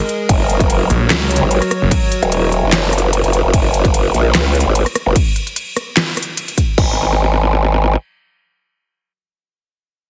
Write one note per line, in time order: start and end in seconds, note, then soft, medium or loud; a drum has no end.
0.00 0.25 G#3 medium
0.00 0.25 G#4 medium
0.00 3.50 A#4 medium
0.00 0.25 D#5 medium
0.09 closed hi-hat medium
0.29 0.89 F#1 loud
0.29 3.50 F#3 medium
0.29 3.50 F#4 medium
0.29 3.50 C#5 medium
0.29 kick loud
0.29 closed hi-hat medium
0.29 crash medium
0.49 closed hi-hat medium
0.60 kick loud
0.60 closed hi-hat soft
0.70 closed hi-hat medium
0.70 crash soft
0.90 1.09 A#1 loud
0.90 closed hi-hat soft
1.10 1.40 C#2 medium
1.10 snare loud
1.10 clap medium
1.10 closed hi-hat medium
1.10 crash medium
1.31 closed hi-hat soft
1.36 closed hi-hat medium
1.41 1.60 G#1 loud
1.51 closed hi-hat medium
1.51 crash soft
1.62 cross-stick medium
1.62 closed hi-hat soft
1.71 cross-stick medium
1.71 closed hi-hat medium
1.82 1.90 F#1 loud
1.91 kick loud
1.91 closed hi-hat medium
1.91 crash medium
2.12 closed hi-hat medium
2.23 2.61 E1 loud
2.23 closed hi-hat soft
2.32 closed hi-hat medium
2.32 crash soft
2.52 closed hi-hat medium
2.63 3.22 F#1 loud
2.72 snare loud
2.72 clap medium
2.72 closed hi-hat medium
2.72 crash medium
2.93 cross-stick medium
2.93 closed hi-hat medium
2.98 closed hi-hat medium
3.13 closed hi-hat medium
3.13 crash soft
3.24 3.42 F#1 loud
3.24 closed hi-hat soft
3.33 closed hi-hat medium
3.44 3.52 F#1 loud
3.54 4.13 F#1 loud
3.54 kick loud
3.54 closed hi-hat medium
3.54 crash medium
3.74 closed hi-hat medium
3.85 kick loud
3.85 closed hi-hat soft
3.94 closed hi-hat medium
3.94 crash soft
4.14 4.33 A#1 loud
4.14 closed hi-hat medium
4.35 4.64 C#2 loud
4.35 snare loud
4.35 clap medium
4.35 closed hi-hat medium
4.35 crash medium
4.55 closed hi-hat medium
4.60 closed hi-hat medium
4.66 4.84 G#1 loud
4.75 closed hi-hat medium
4.75 crash soft
4.86 cross-stick medium
4.86 closed hi-hat soft
4.95 cross-stick medium
4.95 closed hi-hat medium
5.06 5.14 F#1 loud
5.16 kick loud
5.16 closed hi-hat medium
5.16 crash medium
5.36 closed hi-hat medium
5.47 closed hi-hat soft
5.56 closed hi-hat medium
5.56 crash soft
5.76 cross-stick medium
5.76 closed hi-hat medium
5.97 snare loud
5.97 clap medium
5.97 closed hi-hat medium
5.97 crash medium
6.17 cross-stick medium
6.17 closed hi-hat medium
6.22 closed hi-hat medium
6.37 closed hi-hat medium
6.37 crash soft
6.48 closed hi-hat soft
6.58 kick medium
6.58 closed hi-hat medium
6.78 7.95 G#1 loud
6.78 kick loud
6.78 crash medium